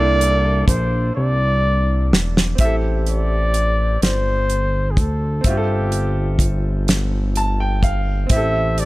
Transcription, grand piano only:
0.00 2.53 A#3 medium
0.00 2.55 D4 medium
0.00 2.57 E4 medium
0.00 2.58 A4 medium
2.55 5.39 C4 medium
2.55 5.40 E4 soft
2.62 5.42 G4 soft
2.62 5.43 A4 medium
5.41 8.24 C4 medium
5.41 8.26 E5 medium
5.47 8.27 F4 soft
5.47 5.54 G4 soft
5.57 8.32 A4 medium
7.37 7.58 A5 medium
7.60 7.82 G5 medium
7.84 8.27 F5 medium
8.27 8.85 C4 medium
8.27 8.85 E4 soft
8.33 8.85 G4 soft
8.33 8.85 A4 medium

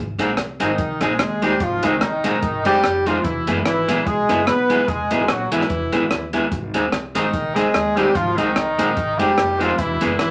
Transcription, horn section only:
0.62 0.99 D#3 medium
0.62 0.99 D#4 medium
1.03 1.43 G#3 medium
1.03 1.43 G#4 medium
1.44 1.61 G3 medium
1.44 1.61 G4 medium
1.62 1.84 F3 medium
1.62 1.84 F4 medium
1.84 2.66 D#3 medium
1.84 2.66 D#4 medium
2.65 3.03 G3 loud
2.65 3.03 G4 loud
3.07 3.25 F3 medium
3.07 3.25 F4 medium
3.24 3.64 E3 medium
3.24 3.64 E4 medium
3.65 4.03 E3 medium
3.65 4.03 E4 medium
4.07 4.47 G#3 medium
4.07 4.47 G#4 loud
4.47 4.88 B3 medium
4.47 4.88 B4 loud
4.88 5.29 G#3 medium
4.88 5.29 G#4 medium
5.31 5.52 F#3 medium
5.31 5.52 F#4 medium
5.52 6.30 E3 medium
5.52 6.30 E4 medium
7.15 7.53 D#3 medium
7.15 7.53 D#4 medium
7.55 7.96 G#3 loud
7.55 7.96 G#4 loud
7.96 8.15 G3 medium
7.96 8.15 G4 loud
8.15 8.38 F3 medium
8.15 8.38 F4 loud
8.37 9.19 D#3 medium
8.37 9.19 D#4 medium
9.19 9.60 G3 loud
9.19 9.60 G4 loud
9.60 9.78 F3 medium
9.60 9.78 F4 medium
9.78 10.18 E3 medium
9.78 10.18 E4 medium
10.19 10.31 E3 medium
10.19 10.31 E4 medium

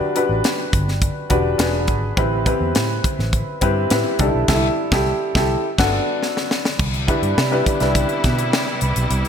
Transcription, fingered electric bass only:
0.29 0.41 A1 medium
0.73 1.08 G1 medium
1.30 1.54 E1 medium
1.59 1.88 E1 medium
1.88 2.11 G#1 medium
2.17 2.52 A1 loud
2.61 2.72 E2 medium
2.76 2.99 A2 medium
3.19 3.42 A1 medium
3.62 3.85 G2 medium
3.91 4.02 A2 medium
4.19 4.31 C2 medium
4.35 4.46 B1 medium
4.48 4.68 C2 loud
4.92 5.11 C2 medium
5.35 5.55 C2 medium
5.78 5.98 G1 medium
6.79 7.14 C2 medium
7.22 7.34 G2 medium
7.38 7.61 C3 loud
7.81 8.04 C2 medium
8.24 8.53 B2 medium
8.53 8.65 C3 medium
8.82 8.94 C2 medium
8.96 9.08 B1 medium
9.11 9.22 C2 loud

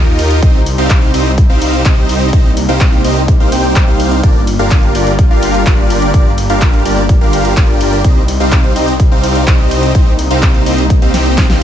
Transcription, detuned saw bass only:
0.00 0.40 D#2 loud
0.43 0.76 C2 loud
0.78 1.12 C2 loud
1.14 1.47 C2 loud
1.50 1.83 C2 loud
1.85 2.31 C2 loud
2.33 2.66 C2 loud
2.69 3.02 C2 loud
3.04 3.38 C2 loud
3.40 3.50 C2 loud
3.52 3.85 C2 loud
3.88 4.21 C2 medium
4.24 4.57 G1 medium
4.59 4.93 G1 loud
4.95 5.28 G1 loud
5.31 5.64 G1 loud
5.66 6.12 G1 loud
6.14 6.47 G1 loud
6.50 6.83 G1 loud
6.85 7.19 G1 loud
7.21 7.54 G1 loud
7.57 8.02 G1 loud
8.04 8.38 C2 loud
8.40 8.73 C2 loud
8.76 9.09 C2 loud
9.12 9.45 C2 loud
9.47 9.93 C2 loud
9.95 10.28 C2 medium
10.31 10.64 C2 loud
10.66 11.00 C2 loud
11.02 11.12 C2 loud
11.14 11.47 C2 medium
11.50 11.63 C2 medium

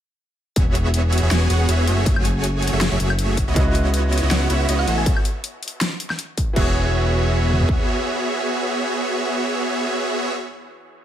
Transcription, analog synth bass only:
0.56 1.21 E1 loud
1.23 1.30 E1 loud
1.31 1.48 E1 loud
1.50 1.67 E1 loud
1.69 1.89 E1 medium
1.88 2.14 F#1 loud
2.17 2.71 F#1 loud
2.73 2.89 F#1 loud
2.92 2.98 F#1 loud
3.00 3.46 F#1 loud
3.48 3.55 C#2 loud
3.56 4.21 C#2 loud
4.23 4.30 C#2 loud
4.31 4.48 C#2 loud
4.50 4.67 C#2 loud
4.69 4.86 C#2 loud
4.88 5.12 A1 loud
6.56 7.65 E1 loud

